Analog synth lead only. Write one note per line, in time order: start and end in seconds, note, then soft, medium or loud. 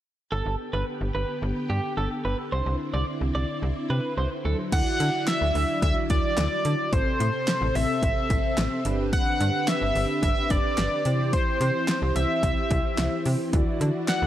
4.73 5.24 F#5 loud
5.28 5.79 E5 loud
5.83 5.95 E5 loud
6.10 6.94 D5 loud
6.93 7.77 C5 medium
7.75 8.85 E5 medium
9.13 9.70 F#5 loud
9.68 10.22 E5 loud
10.23 10.52 E5 loud
10.51 11.33 D5 loud
11.33 12.12 C5 medium
12.16 13.22 E5 medium
14.08 14.27 F#5 medium